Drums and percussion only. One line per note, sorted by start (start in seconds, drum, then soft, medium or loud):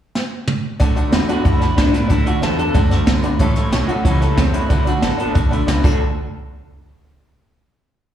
0.15 snare medium
0.48 mid tom medium
0.80 kick loud
0.80 closed hi-hat medium
0.97 closed hi-hat medium
1.12 snare loud
1.12 closed hi-hat medium
1.29 closed hi-hat medium
1.45 kick loud
1.45 closed hi-hat medium
1.61 snare soft
1.61 closed hi-hat medium
1.78 kick medium
1.78 snare loud
1.78 closed hi-hat medium
1.94 snare soft
1.94 closed hi-hat medium
2.10 kick loud
2.10 closed hi-hat medium
2.26 closed hi-hat medium
2.43 snare loud
2.43 closed hi-hat medium
2.59 closed hi-hat medium
2.75 kick loud
2.75 closed hi-hat medium
2.91 snare soft
2.91 closed hi-hat medium
3.07 kick medium
3.07 snare loud
3.07 closed hi-hat medium
3.23 closed hi-hat medium
3.39 kick loud
3.39 closed hi-hat medium
3.56 snare soft
3.56 closed hi-hat medium
3.72 snare loud
3.72 closed hi-hat medium
3.89 closed hi-hat medium
4.05 kick loud
4.05 snare soft
4.05 closed hi-hat medium
4.22 snare soft
4.22 closed hi-hat medium
4.37 kick medium
4.37 snare loud
4.37 closed hi-hat loud
4.54 closed hi-hat medium
4.70 kick loud
4.70 closed hi-hat medium
4.87 closed hi-hat medium
5.02 snare medium
5.02 closed hi-hat medium
5.19 closed hi-hat medium
5.35 kick loud
5.35 closed hi-hat medium
5.52 closed hi-hat medium
5.68 snare loud
5.68 closed hi-hat medium
5.84 kick loud
5.84 crash loud